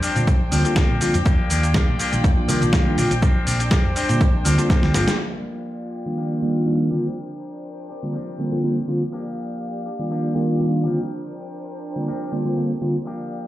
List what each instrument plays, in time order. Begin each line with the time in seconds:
Already playing: violin section D4 C5 G5
0.02 clean electric guitar F3 C4 D4 G4, muted fingered electric bass stroke, open hi-hat, shaker
0.15 fingered electric bass A#2, tine electric piano D3 G3 A#3 C4 F4, clean electric guitar C4 D4 G4, closed hi-hat, shaker
0.27 kick, closed hi-hat, shaker
0.41 muted fingered electric bass stroke
0.51 fingered electric bass D2, tine electric piano D3 G3 A#3 C4 F4, clean electric guitar F3 C4 D4 G4, open hi-hat, shaker
0.65 tine electric piano D3 G3 A#3 C4 F4, clean electric guitar C4 D4 G4, closed hi-hat, shaker
0.76 tine electric piano D3, clean electric guitar F3 C4 D4 G4, kick, snare, closed hi-hat, shaker
0.90 fingered electric bass A#2
1.01 tine electric piano D3 G3 A#3 C4 F4, clean electric guitar F3 C4 D4 G4, muted fingered electric bass stroke, open hi-hat, shaker
1.14 fingered electric bass F2, clean electric guitar C4 D4 G4, closed hi-hat, shaker
1.25 fingered electric bass D#2, clean electric guitar F3 A#3 D4 G4, violin section F4 D5, kick, closed hi-hat, shaker
1.50 fingered electric bass D#2, clean electric guitar F3 A#3 D4 G4, open hi-hat, shaker
1.63 clean electric guitar A#3 D4 G4, closed hi-hat, shaker
1.74 clean electric guitar F3 A#3 D4 G4, kick, snare, closed hi-hat, shaker
1.88 fingered electric bass A#1, clean electric guitar A#3 D4 G4
1.99 clean electric guitar F3 A#3 D4 G4, muted fingered electric bass stroke, open hi-hat, shaker
2.12 fingered electric bass A#1, tine electric piano D#3 G3 A#3 D4 F4, clean electric guitar A#3 D4 G4, closed hi-hat, shaker
2.24 fingered electric bass D#2, kick, closed hi-hat, shaker
2.48 fingered electric bass C3, tine electric piano D#3 G3 A#3 D4 F4, clean electric guitar F3 A#3 D4 G4, open hi-hat, shaker
2.61 fingered electric bass A#1, clean electric guitar A#3 D4 G4, closed hi-hat, shaker
2.73 tine electric piano D#3 G3 A#3 F4, clean electric guitar F3 A#3 D4 G4, kick, snare, closed hi-hat, shaker
2.97 fingered electric bass A#1, tine electric piano D3 G3 A#3 C4 F4, clean electric guitar F3 C4 D4 G4, violin section D4 C5, open hi-hat, shaker
3.10 fingered electric bass A#1, clean electric guitar C4 D4 G4, closed hi-hat, shaker
3.22 clean electric guitar F3 C4 D4 G4, kick, closed hi-hat, shaker
3.46 fingered electric bass A#1, clean electric guitar F3 C4 D4 G4, open hi-hat, shaker
3.59 clean electric guitar C4 D4 G4, closed hi-hat, shaker
3.71 clean electric guitar F3 C4 D4 G4, kick, snare, closed hi-hat, shaker
3.84 fingered electric bass F2, clean electric guitar C4 D4 G4
3.95 clean electric guitar F3 C4 D4 G4, muted fingered electric bass stroke, open hi-hat, shaker
4.08 fingered electric bass A#2, tine electric piano D3 G3 A#3 C4 F4, clean electric guitar C4 D4 G4, closed hi-hat, shaker
4.21 kick, closed hi-hat, shaker
4.34 muted fingered electric bass stroke
4.45 fingered electric bass D2, tine electric piano D3 G3 A#3 C4 F4, clean electric guitar F3 C4 D4 G4, open hi-hat, shaker
4.58 tine electric piano D3 G3 A#3 C4 F4, clean electric guitar C4 D4 G4, closed hi-hat, shaker
4.69 tine electric piano D3 G3 C4, clean electric guitar F3 C4 D4 G4, kick, snare, closed hi-hat, shaker
4.83 fingered electric bass D2, snare
4.94 fingered electric bass G1, tine electric piano D3 G3 A#3 C4 F4, clean electric guitar F3 C4 D4 G4, snare, open hi-hat, shaker
5.07 clean electric guitar C4 D4 G4, snare, closed hi-hat, shaker
5.18 clean electric guitar F3 A#3 D4 G4, violin section F4 D5 G5, crash
6.06 tine electric piano D#3 G3 A#3 D4 F4
6.17 clean electric guitar F3 A#3 D4 G4
6.42 tine electric piano D#3 G3 A#3 D4 F4
6.66 tine electric piano D#3 G3 A#3 D4 F4
6.91 tine electric piano D3 G3 A#3 C4 F4, clean electric guitar F3 C4 D4 G4, violin section D4 A#4 C5 G5
7.89 clean electric guitar C4 D4 G4
8.03 tine electric piano D3 G3 A#3 C4 F4
8.14 clean electric guitar F3 C4 D4 G4
8.38 tine electric piano D3 G3 A#3 C4 F4
8.51 tine electric piano D3 G3 A#3 C4 F4
8.63 tine electric piano D3 G3 A#3 C4 F4
8.88 tine electric piano D3 G3 A#3 C4 F4
9.12 clean electric guitar F3 A#3 D4 G4, violin section G4 D5 F5
9.86 clean electric guitar A#3 D4 G4
9.99 tine electric piano D#3 G3 A#3 D4 F4
10.11 clean electric guitar F3 A#3 D4 G4
10.35 tine electric piano D#3 G3 A#3 D4 F4, clean electric guitar A#3 D4 G4
10.60 tine electric piano D#3 G3 A#3 D4 F4
10.84 tine electric piano D3 G3 A#3 C4 F4, clean electric guitar F3 C4 D4 G4, violin section D4 A#4 C5 G5
11.96 tine electric piano D3 G3 A#3 C4 F4
12.07 clean electric guitar F3 C4 D4 G4
12.32 tine electric piano D3 G3 A#3 C4 F4, clean electric guitar C4 D4 G4
12.45 tine electric piano D3 G3 A#3 C4 F4
12.56 tine electric piano D3 G3 A#3 C4 F4
12.81 tine electric piano D3 G3 A#3 C4 F4
13.05 clean electric guitar F3 A#3 D4 G4, violin section G4 D5 F5